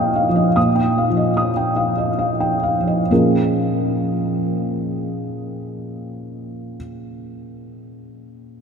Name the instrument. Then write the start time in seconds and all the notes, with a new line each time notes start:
felt piano
Already playing: A#2 F3 D#5 F5 G5 D#6
0.16 F5
0.29 F3
0.36 D#5
0.56 A#2 D#6
0.75 G5
0.98 F5
1.10 F3
1.17 D#5
1.37 D#6
1.57 G5
1.76 F5
1.98 D#5
2.19 F5
2.40 G5
2.63 F5
2.81 F3
2.87 D#5
3.11 A#2 F3 C#4 F4 G#4 A#4